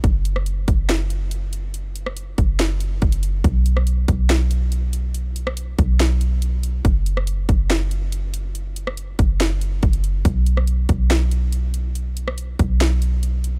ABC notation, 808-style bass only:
X:1
M:4/4
L:1/8
Q:1/4=141
K:F#mix
V:1 name="808-style bass" clef=bass
F,,,3 F,,,4- F,,,- | F,,,3 F,,,3 F,,,2 | B,,,3 B,,,4- B,,,- | B,,,3 B,,,4- B,,, |
F,,,3 F,,,4- F,,,- | F,,,3 F,,,3 F,,,2 | B,,,3 B,,,4- B,,,- | B,,,3 B,,,4- B,,, |]